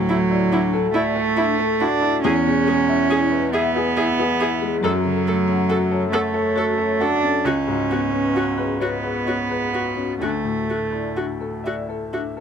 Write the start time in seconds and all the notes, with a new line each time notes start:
Already playing: D2 A2 F#3
0.09 A3 E4
0.30 E4 D5
0.52 D4 E4 F#4
0.73 A4
0.94 A3 E4 D5 E5
1.16 A4
1.37 D4 E4 E5
1.58 A4
1.80 D4 E4 F#4 D5
2.02 E4 F#4
2.24 E2 C#4 E4 G#4
2.46 B2 G#4
2.67 G#3 G#4
2.89 E4 E5
3.09 E4 G#4
3.32 E4 B4
3.53 B3 G#4 E5
3.75 G#4 B4
3.97 E4 G#4 E5
4.18 G#4 B4
4.40 E4 G#4 E5
4.61 G#3 G#4
4.82 F#2 F#3 F#4 A4
5.04 C#3 A4
5.27 A3 A4
5.48 C#4 F#5
5.68 F#4 A4
5.91 A4 C#5
6.12 A3 A4 C#5 F#5
6.34 A4 C#5
6.55 F#4 A4 C#5
6.78 A4 C#5
7.00 D4 F#4 A4 F#5
7.23 C#4 A4
7.44 C#2 C#4 F#4
7.67 G#2 F#4
7.90 B3 F#4
8.12 C#4 B4
8.34 C#4 F#4
8.58 G#4 B4
8.80 B3 F#4 B4 C#5
9.03 G#4 B4
9.26 C#4 F#4 C#5
9.50 G#4 B4
9.73 F#4 B4
9.97 C#4 F#4
10.21 D2 A3 D4 F#4
10.44 A2 F#4
10.68 A3 F#4
10.92 E4 D5
11.16 D4 F#4
11.40 A4
11.64 F#4 D5 E5
11.89 A4
12.13 D4 F#4 E5
12.37 A4